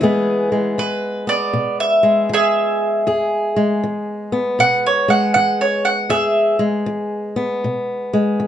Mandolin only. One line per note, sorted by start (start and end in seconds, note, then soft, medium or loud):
0.79 1.28 B4 medium
1.29 1.78 D5 medium
1.80 2.29 E5 medium
2.33 3.80 G#4 medium
2.33 3.81 E5 medium
4.60 4.84 F#5 loud
4.86 5.10 C#5 medium
5.10 5.33 F#5 medium
5.34 5.59 F#5 loud
5.61 5.85 C#5 medium
5.85 6.10 F#5 medium
6.10 6.58 E5 medium